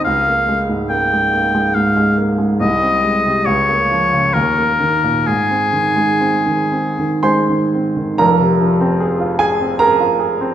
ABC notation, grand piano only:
X:1
M:3/4
L:1/16
Q:1/4=70
K:Ab
V:1 name="Grand piano"
z12 | z12 | z8 [cac']4 | [K:Fm] [Bb]6 [Aa]2 [Bb]4 |]
V:2 name="Grand piano" clef=bass
D,, B, A, A,, B, A, B, A, A,, A, B, A, | C,, C A, C, D,, B, F, D, E,, B, E, B,, | A,, C E, A, C E, C E, A, E, C E, | [K:Fm] [F,,,F,,] C, F, C A F2 C A F A C |]